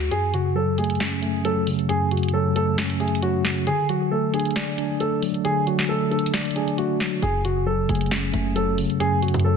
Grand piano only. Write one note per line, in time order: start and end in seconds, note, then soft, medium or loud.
0.11 0.30 G#4 medium
0.34 0.52 F#4 medium
0.56 0.74 A4 medium
0.78 1.41 G#4 medium
1.45 1.63 A4 medium
1.89 2.08 G#4 loud
2.11 2.30 F#4 medium
2.33 2.52 A4 medium
2.56 2.74 A4 medium
3.00 3.19 G#4 medium
3.22 3.64 F#4 medium
3.67 3.85 G#4 loud
3.89 4.08 F#4 medium
4.11 4.30 A4 medium
4.34 4.96 G#4 medium
5.00 5.19 A4 medium
5.45 5.63 G#4 loud
5.67 5.85 F#4 medium
5.89 6.08 A4 medium
6.11 6.30 A4 medium
6.56 6.74 G#4 medium
6.78 7.20 F#4 medium
7.22 7.41 G#4 loud
7.44 7.63 F#4 medium
7.66 7.85 A4 medium
7.89 8.52 G#4 medium
8.56 8.74 A4 medium
9.00 9.19 G#4 loud
9.22 9.41 F#4 medium
9.44 9.57 A4 medium